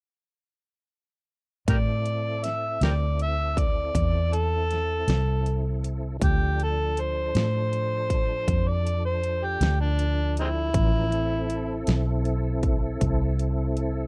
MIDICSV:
0, 0, Header, 1, 5, 480
1, 0, Start_track
1, 0, Key_signature, 0, "minor"
1, 0, Tempo, 756144
1, 1058, Time_signature, 12, 3, 24, 8
1, 8932, End_track
2, 0, Start_track
2, 0, Title_t, "Harmonica"
2, 0, Program_c, 0, 22
2, 1074, Note_on_c, 0, 67, 53
2, 1074, Note_on_c, 0, 70, 53
2, 1074, Note_on_c, 0, 74, 76
2, 1114, Note_off_c, 0, 70, 0
2, 1118, Note_off_c, 0, 67, 0
2, 1549, Note_on_c, 0, 76, 62
2, 1558, Note_off_c, 0, 74, 0
2, 1776, Note_off_c, 0, 76, 0
2, 1800, Note_on_c, 0, 67, 51
2, 1800, Note_on_c, 0, 70, 51
2, 1800, Note_on_c, 0, 74, 73
2, 1839, Note_off_c, 0, 70, 0
2, 1854, Note_off_c, 0, 67, 0
2, 2022, Note_off_c, 0, 74, 0
2, 2046, Note_on_c, 0, 76, 79
2, 2277, Note_on_c, 0, 74, 71
2, 2286, Note_off_c, 0, 76, 0
2, 2759, Note_on_c, 0, 69, 85
2, 2768, Note_off_c, 0, 74, 0
2, 3683, Note_off_c, 0, 69, 0
2, 3963, Note_on_c, 0, 67, 71
2, 4184, Note_off_c, 0, 67, 0
2, 4212, Note_on_c, 0, 69, 70
2, 4445, Note_on_c, 0, 72, 85
2, 4455, Note_off_c, 0, 69, 0
2, 5509, Note_on_c, 0, 74, 65
2, 5518, Note_off_c, 0, 72, 0
2, 5737, Note_off_c, 0, 74, 0
2, 5749, Note_on_c, 0, 72, 70
2, 5994, Note_on_c, 0, 67, 68
2, 6004, Note_off_c, 0, 72, 0
2, 6219, Note_off_c, 0, 67, 0
2, 6225, Note_on_c, 0, 62, 77
2, 6571, Note_off_c, 0, 62, 0
2, 6604, Note_on_c, 0, 56, 57
2, 6604, Note_on_c, 0, 60, 57
2, 6604, Note_on_c, 0, 64, 82
2, 6643, Note_off_c, 0, 56, 0
2, 6654, Note_off_c, 0, 60, 0
2, 7527, Note_off_c, 0, 64, 0
2, 8932, End_track
3, 0, Start_track
3, 0, Title_t, "Tonewheel organ"
3, 0, Program_c, 1, 16
3, 1063, Note_on_c, 1, 64, 47
3, 1064, Note_on_c, 1, 69, 55
3, 1065, Note_on_c, 1, 60, 55
3, 3915, Note_off_c, 1, 64, 0
3, 3916, Note_off_c, 1, 60, 0
3, 3916, Note_off_c, 1, 69, 0
3, 3931, Note_on_c, 1, 53, 47
3, 3934, Note_on_c, 1, 62, 47
3, 3934, Note_on_c, 1, 69, 53
3, 6790, Note_off_c, 1, 53, 0
3, 6791, Note_off_c, 1, 62, 0
3, 6792, Note_off_c, 1, 69, 0
3, 6812, Note_on_c, 1, 61, 52
3, 6814, Note_on_c, 1, 70, 49
3, 6816, Note_on_c, 1, 53, 46
3, 7055, Note_off_c, 1, 61, 0
3, 7056, Note_off_c, 1, 70, 0
3, 7057, Note_off_c, 1, 53, 0
3, 7060, Note_on_c, 1, 64, 62
3, 7065, Note_on_c, 1, 60, 64
3, 7066, Note_on_c, 1, 69, 63
3, 8932, Note_off_c, 1, 60, 0
3, 8932, Note_off_c, 1, 64, 0
3, 8932, Note_off_c, 1, 69, 0
3, 8932, End_track
4, 0, Start_track
4, 0, Title_t, "Fingered electric bass"
4, 0, Program_c, 2, 33
4, 1065, Note_on_c, 2, 45, 64
4, 1760, Note_off_c, 2, 45, 0
4, 1784, Note_on_c, 2, 38, 66
4, 2479, Note_off_c, 2, 38, 0
4, 2506, Note_on_c, 2, 40, 71
4, 3200, Note_off_c, 2, 40, 0
4, 3223, Note_on_c, 2, 36, 70
4, 3919, Note_off_c, 2, 36, 0
4, 3946, Note_on_c, 2, 38, 64
4, 4640, Note_off_c, 2, 38, 0
4, 4666, Note_on_c, 2, 45, 71
4, 5361, Note_off_c, 2, 45, 0
4, 5381, Note_on_c, 2, 41, 68
4, 6078, Note_off_c, 2, 41, 0
4, 6098, Note_on_c, 2, 38, 78
4, 6797, Note_off_c, 2, 38, 0
4, 6818, Note_on_c, 2, 33, 64
4, 7517, Note_off_c, 2, 33, 0
4, 7541, Note_on_c, 2, 35, 70
4, 8239, Note_off_c, 2, 35, 0
4, 8262, Note_on_c, 2, 36, 75
4, 8932, Note_off_c, 2, 36, 0
4, 8932, End_track
5, 0, Start_track
5, 0, Title_t, "Drums"
5, 1065, Note_on_c, 9, 36, 86
5, 1066, Note_on_c, 9, 42, 71
5, 1129, Note_off_c, 9, 36, 0
5, 1130, Note_off_c, 9, 42, 0
5, 1305, Note_on_c, 9, 42, 54
5, 1368, Note_off_c, 9, 42, 0
5, 1547, Note_on_c, 9, 42, 55
5, 1557, Note_on_c, 9, 38, 29
5, 1610, Note_off_c, 9, 42, 0
5, 1621, Note_off_c, 9, 38, 0
5, 1786, Note_on_c, 9, 42, 65
5, 1797, Note_on_c, 9, 38, 83
5, 1850, Note_off_c, 9, 42, 0
5, 1860, Note_off_c, 9, 38, 0
5, 2028, Note_on_c, 9, 42, 49
5, 2091, Note_off_c, 9, 42, 0
5, 2266, Note_on_c, 9, 36, 62
5, 2271, Note_on_c, 9, 42, 54
5, 2329, Note_off_c, 9, 36, 0
5, 2335, Note_off_c, 9, 42, 0
5, 2506, Note_on_c, 9, 36, 72
5, 2510, Note_on_c, 9, 42, 83
5, 2569, Note_off_c, 9, 36, 0
5, 2573, Note_off_c, 9, 42, 0
5, 2750, Note_on_c, 9, 42, 56
5, 2814, Note_off_c, 9, 42, 0
5, 2987, Note_on_c, 9, 42, 42
5, 2998, Note_on_c, 9, 38, 24
5, 3050, Note_off_c, 9, 42, 0
5, 3061, Note_off_c, 9, 38, 0
5, 3224, Note_on_c, 9, 42, 68
5, 3235, Note_on_c, 9, 38, 90
5, 3288, Note_off_c, 9, 42, 0
5, 3298, Note_off_c, 9, 38, 0
5, 3467, Note_on_c, 9, 42, 54
5, 3530, Note_off_c, 9, 42, 0
5, 3709, Note_on_c, 9, 42, 48
5, 3773, Note_off_c, 9, 42, 0
5, 3945, Note_on_c, 9, 36, 97
5, 3948, Note_on_c, 9, 42, 69
5, 4009, Note_off_c, 9, 36, 0
5, 4011, Note_off_c, 9, 42, 0
5, 4188, Note_on_c, 9, 42, 50
5, 4251, Note_off_c, 9, 42, 0
5, 4426, Note_on_c, 9, 42, 50
5, 4489, Note_off_c, 9, 42, 0
5, 4666, Note_on_c, 9, 42, 70
5, 4677, Note_on_c, 9, 38, 94
5, 4729, Note_off_c, 9, 42, 0
5, 4740, Note_off_c, 9, 38, 0
5, 4906, Note_on_c, 9, 42, 51
5, 4970, Note_off_c, 9, 42, 0
5, 5142, Note_on_c, 9, 36, 58
5, 5143, Note_on_c, 9, 42, 47
5, 5205, Note_off_c, 9, 36, 0
5, 5207, Note_off_c, 9, 42, 0
5, 5382, Note_on_c, 9, 36, 73
5, 5384, Note_on_c, 9, 42, 73
5, 5445, Note_off_c, 9, 36, 0
5, 5447, Note_off_c, 9, 42, 0
5, 5628, Note_on_c, 9, 42, 57
5, 5691, Note_off_c, 9, 42, 0
5, 5862, Note_on_c, 9, 42, 42
5, 5926, Note_off_c, 9, 42, 0
5, 6101, Note_on_c, 9, 42, 77
5, 6112, Note_on_c, 9, 38, 90
5, 6164, Note_off_c, 9, 42, 0
5, 6175, Note_off_c, 9, 38, 0
5, 6341, Note_on_c, 9, 42, 59
5, 6404, Note_off_c, 9, 42, 0
5, 6583, Note_on_c, 9, 42, 54
5, 6647, Note_off_c, 9, 42, 0
5, 6819, Note_on_c, 9, 36, 93
5, 6819, Note_on_c, 9, 42, 72
5, 6883, Note_off_c, 9, 36, 0
5, 6883, Note_off_c, 9, 42, 0
5, 7060, Note_on_c, 9, 42, 55
5, 7124, Note_off_c, 9, 42, 0
5, 7299, Note_on_c, 9, 42, 54
5, 7362, Note_off_c, 9, 42, 0
5, 7535, Note_on_c, 9, 42, 66
5, 7546, Note_on_c, 9, 38, 84
5, 7599, Note_off_c, 9, 42, 0
5, 7610, Note_off_c, 9, 38, 0
5, 7778, Note_on_c, 9, 42, 46
5, 7841, Note_off_c, 9, 42, 0
5, 8017, Note_on_c, 9, 42, 48
5, 8018, Note_on_c, 9, 36, 61
5, 8080, Note_off_c, 9, 42, 0
5, 8082, Note_off_c, 9, 36, 0
5, 8260, Note_on_c, 9, 36, 74
5, 8260, Note_on_c, 9, 42, 75
5, 8323, Note_off_c, 9, 36, 0
5, 8323, Note_off_c, 9, 42, 0
5, 8502, Note_on_c, 9, 42, 54
5, 8566, Note_off_c, 9, 42, 0
5, 8739, Note_on_c, 9, 42, 46
5, 8803, Note_off_c, 9, 42, 0
5, 8932, End_track
0, 0, End_of_file